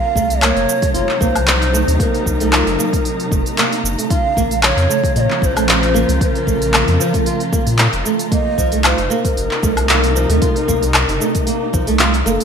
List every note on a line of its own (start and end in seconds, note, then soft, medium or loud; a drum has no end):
0.00 4.10 C3 medium
0.00 0.90 F4 medium
0.00 0.43 F5 loud
0.00 12.44 A#5 medium
0.15 0.52 C2 loud
0.15 4.10 F#3 medium
0.15 0.41 A3 medium
0.15 kick medium
0.15 shaker medium
0.30 open hi-hat soft
0.30 shaker soft
0.41 0.81 A#3 medium
0.41 0.93 C#5 loud
0.41 clap loud
0.41 open hi-hat medium
0.41 low woodblock medium
0.41 shaker soft
0.56 0.66 F#1 medium
0.56 open hi-hat soft
0.69 shaker medium
0.81 0.93 A3 medium
0.81 5.18 D#4 loud
0.81 kick loud
0.81 open hi-hat soft
0.81 shaker soft
0.94 1.06 F#1 medium
0.94 1.08 F4 medium
0.94 1.22 C#5 loud
0.94 open hi-hat medium
0.94 shaker soft
1.09 clap soft
1.21 1.84 C2 medium
1.21 1.34 A#3 loud
1.21 1.99 C5 loud
1.21 kick loud
1.21 shaker medium
1.35 open hi-hat soft
1.35 low woodblock medium
1.35 shaker soft
1.48 clap loud
1.48 open hi-hat medium
1.48 shaker soft
1.62 open hi-hat soft
1.73 1.99 A3 medium
1.73 shaker medium
1.88 1.98 D#2 medium
1.88 open hi-hat soft
1.88 shaker soft
1.99 2.39 A#3 medium
1.99 2.04 C5 medium
1.99 kick loud
1.99 open hi-hat medium
1.99 shaker soft
2.03 3.84 A#4 loud
2.14 open hi-hat soft
2.26 2.63 C2 medium
2.26 kick medium
2.26 shaker medium
2.40 2.51 A3 medium
2.40 open hi-hat soft
2.40 shaker soft
2.52 2.66 F4 medium
2.52 clap loud
2.52 open hi-hat medium
2.52 low woodblock medium
2.52 shaker soft
2.67 2.77 F#1 medium
2.67 open hi-hat soft
2.79 2.92 A#3 medium
2.79 shaker medium
2.93 kick loud
2.93 open hi-hat soft
2.93 shaker soft
3.05 open hi-hat medium
3.05 shaker soft
3.20 open hi-hat soft
3.31 3.43 F#1 medium
3.31 3.56 A3 medium
3.31 kick loud
3.31 shaker medium
3.46 open hi-hat soft
3.46 shaker soft
3.58 3.97 A#3 medium
3.58 clap loud
3.58 open hi-hat medium
3.58 shaker soft
3.72 open hi-hat soft
3.84 3.96 F#1 medium
3.84 shaker medium
3.98 4.09 A3 medium
3.98 open hi-hat soft
3.98 shaker soft
4.10 8.31 C#3 medium
4.10 4.24 F4 medium
4.10 4.60 F5 loud
4.10 kick loud
4.10 open hi-hat soft
4.10 shaker soft
4.34 4.73 A#1 medium
4.34 4.50 A#3 loud
4.34 10.00 F4 medium
4.34 kick medium
4.34 shaker medium
4.40 8.31 F3 medium
4.51 open hi-hat soft
4.51 shaker soft
4.63 5.12 C#5 loud
4.63 clap loud
4.63 open hi-hat medium
4.63 low woodblock medium
4.63 shaker soft
4.77 4.87 F2 medium
4.77 open hi-hat soft
4.89 5.14 A3 medium
4.89 shaker medium
5.04 kick loud
5.04 open hi-hat soft
5.04 shaker soft
5.16 5.27 A#2 medium
5.16 5.41 A#3 medium
5.16 5.22 D#5 loud
5.16 open hi-hat medium
5.16 shaker soft
5.21 5.42 C#5 loud
5.30 clap soft
5.42 6.05 A#1 medium
5.42 5.55 F3 medium
5.42 6.21 C5 loud
5.42 5.47 C#5 medium
5.42 kick loud
5.42 shaker medium
5.56 5.67 A3 medium
5.56 open hi-hat soft
5.56 low woodblock medium
5.56 shaker soft
5.68 5.82 F4 medium
5.68 clap loud
5.68 open hi-hat soft
5.68 shaker soft
5.83 open hi-hat soft
5.94 6.08 A#3 loud
5.94 shaker medium
6.09 6.19 C#2 medium
6.09 open hi-hat soft
6.09 shaker soft
6.21 6.27 C5 medium
6.21 kick loud
6.21 open hi-hat medium
6.21 shaker soft
6.26 8.05 A#4 medium
6.35 open hi-hat soft
6.47 6.84 A#1 loud
6.47 6.72 A3 medium
6.47 kick medium
6.47 shaker medium
6.62 open hi-hat soft
6.62 shaker soft
6.73 6.98 A#3 medium
6.73 clap loud
6.73 open hi-hat medium
6.73 low woodblock medium
6.73 shaker soft
6.88 6.98 F2 medium
6.88 open hi-hat soft
7.00 7.13 F3 medium
7.00 shaker medium
7.14 7.25 A3 medium
7.14 kick loud
7.14 open hi-hat soft
7.14 shaker soft
7.26 7.40 F4 medium
7.26 open hi-hat medium
7.26 shaker soft
7.40 open hi-hat soft
7.52 7.66 A#3 medium
7.52 kick loud
7.52 shaker medium
7.67 7.88 A#2 loud
7.67 open hi-hat soft
7.67 shaker soft
7.79 clap medium
7.79 open hi-hat soft
7.79 shaker soft
7.93 8.03 F1 loud
7.93 open hi-hat soft
8.05 8.30 A3 medium
8.05 shaker medium
8.19 open hi-hat soft
8.19 shaker soft
8.31 12.44 C3 medium
8.31 8.57 A#3 medium
8.31 8.81 D#5 loud
8.31 kick loud
8.31 open hi-hat medium
8.31 shaker soft
8.58 8.94 C2 loud
8.58 8.71 F3 medium
8.58 kick medium
8.58 shaker medium
8.70 8.83 A3 medium
8.70 12.44 D#4 medium
8.70 open hi-hat soft
8.70 shaker soft
8.84 8.98 F4 medium
8.84 9.13 C5 loud
8.84 clap loud
8.84 open hi-hat medium
8.84 low woodblock medium
8.84 shaker soft
8.98 9.08 F#1 medium
8.98 open hi-hat soft
9.10 9.24 A#3 loud
9.10 12.01 A#4 loud
9.10 shaker medium
9.25 kick loud
9.25 open hi-hat soft
9.25 shaker soft
9.37 9.49 F#1 medium
9.37 open hi-hat medium
9.37 shaker soft
9.51 clap soft
9.62 10.26 C2 medium
9.62 9.88 A3 medium
9.62 kick loud
9.62 shaker medium
9.77 open hi-hat soft
9.77 low woodblock medium
9.77 shaker soft
9.89 10.14 A#3 medium
9.89 clap medium
9.89 open hi-hat medium
9.89 shaker soft
10.04 open hi-hat soft
10.15 10.28 F3 medium
10.15 shaker medium
10.29 10.40 D#2 medium
10.29 10.41 A3 medium
10.29 open hi-hat soft
10.29 shaker soft
10.42 10.55 F4 medium
10.42 kick loud
10.42 open hi-hat medium
10.42 shaker soft
10.56 open hi-hat soft
10.68 11.05 C2 loud
10.68 10.82 A#3 loud
10.68 kick medium
10.68 shaker medium
10.83 open hi-hat soft
10.83 shaker soft
10.94 clap loud
10.94 open hi-hat medium
10.94 low woodblock medium
10.94 shaker soft
11.09 11.19 F#1 medium
11.09 open hi-hat soft
11.20 11.46 A3 medium
11.20 shaker medium
11.35 kick loud
11.35 open hi-hat soft
11.35 shaker soft
11.47 11.72 A#3 medium
11.47 open hi-hat medium
11.47 shaker soft
11.73 12.23 C2 medium
11.73 11.86 F3 medium
11.73 kick loud
11.73 shaker medium
11.87 11.99 A3 medium
11.87 open hi-hat soft
11.87 shaker soft
11.99 12.13 F4 medium
11.99 clap medium
11.99 open hi-hat medium
11.99 shaker soft
12.14 open hi-hat soft
12.26 12.38 F#1 loud
12.26 12.40 A#3 loud
12.26 12.44 A4 loud
12.26 shaker medium
12.40 open hi-hat soft